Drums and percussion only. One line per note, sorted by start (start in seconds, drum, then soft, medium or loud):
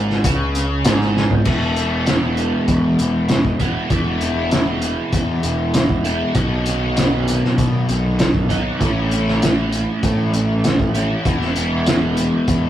0.10 snare soft
0.24 kick loud
0.24 closed hi-hat loud
0.55 closed hi-hat medium
0.85 snare loud
0.85 closed hi-hat loud
1.01 snare soft
1.17 snare medium
1.30 floor tom medium
1.45 kick medium
1.45 crash medium
1.76 closed hi-hat medium
2.06 snare loud
2.06 closed hi-hat medium
2.37 closed hi-hat medium
2.68 kick medium
2.68 closed hi-hat medium
2.99 closed hi-hat medium
3.29 snare loud
3.29 closed hi-hat medium
3.45 kick medium
3.60 kick medium
3.60 closed hi-hat soft
3.90 kick medium
3.90 closed hi-hat medium
4.21 closed hi-hat medium
4.51 snare loud
4.51 closed hi-hat medium
4.82 closed hi-hat medium
5.13 kick medium
5.13 closed hi-hat medium
5.43 closed hi-hat medium
5.74 snare loud
5.74 closed hi-hat medium
5.89 kick medium
6.05 closed hi-hat medium
6.35 kick loud
6.35 closed hi-hat medium
6.66 closed hi-hat medium
6.97 snare loud
6.97 closed hi-hat medium
7.28 closed hi-hat medium
7.45 snare soft
7.58 kick medium
7.58 closed hi-hat medium
7.89 closed hi-hat medium
8.19 snare loud
8.19 closed hi-hat medium
8.35 kick medium
8.50 kick medium
8.50 closed hi-hat medium
8.81 kick medium
8.81 closed hi-hat medium
9.11 closed hi-hat medium
9.28 snare soft
9.42 snare loud
9.42 closed hi-hat medium
9.72 closed hi-hat medium
10.03 kick medium
10.03 closed hi-hat medium
10.33 closed hi-hat medium
10.64 snare loud
10.64 closed hi-hat medium
10.79 kick medium
10.95 closed hi-hat medium
11.25 kick medium
11.25 closed hi-hat medium
11.42 snare soft
11.56 closed hi-hat medium
11.86 snare loud
11.86 closed hi-hat medium
12.17 closed hi-hat medium
12.48 kick medium
12.48 closed hi-hat medium